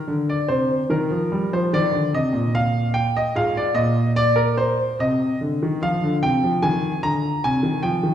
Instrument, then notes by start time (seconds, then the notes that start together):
grand piano
Already playing: A#4
0.08 D3
0.29 D5
0.48 C3 C5
0.89 D#3 D#4 A#4
1.10 F3
1.32 G3
1.53 F3 C5
1.73 D#3 D5
1.92 D3
2.13 C3 D#5
2.32 A#2
2.55 F5
2.94 G5
3.17 D#5
3.35 G#2 F4 F5
3.57 D5
3.74 A#2 D#5
4.16 D5
4.36 A#4
4.57 C5
4.99 C3 D#5
5.41 D3
5.63 D#3
5.82 F3 F4 F5
6.04 D3
6.22 C3 G5
6.43 F3
6.62 D#3 G#5
7.03 D3 A#5
7.44 C3 G#5
7.63 D#3
7.82 F3 G5
8.03 D#3